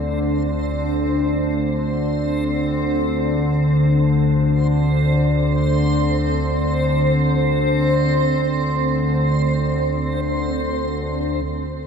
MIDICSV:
0, 0, Header, 1, 3, 480
1, 0, Start_track
1, 0, Tempo, 500000
1, 11393, End_track
2, 0, Start_track
2, 0, Title_t, "Synth texture"
2, 0, Program_c, 0, 99
2, 0, Note_on_c, 0, 60, 77
2, 0, Note_on_c, 0, 72, 77
2, 10978, Note_off_c, 0, 60, 0
2, 10986, Note_off_c, 0, 72, 0
2, 10989, Note_on_c, 0, 60, 79
2, 10998, Note_on_c, 0, 72, 80
2, 11393, Note_off_c, 0, 60, 0
2, 11393, Note_off_c, 0, 72, 0
2, 11393, End_track
3, 0, Start_track
3, 0, Title_t, "Synth drone"
3, 0, Program_c, 1, 95
3, 0, Note_on_c, 1, 38, 69
3, 0, Note_on_c, 1, 50, 69
3, 10975, Note_off_c, 1, 50, 0
3, 10976, Note_off_c, 1, 38, 0
3, 10986, Note_on_c, 1, 50, 70
3, 10988, Note_on_c, 1, 38, 72
3, 11393, Note_off_c, 1, 38, 0
3, 11393, Note_off_c, 1, 50, 0
3, 11393, End_track
0, 0, End_of_file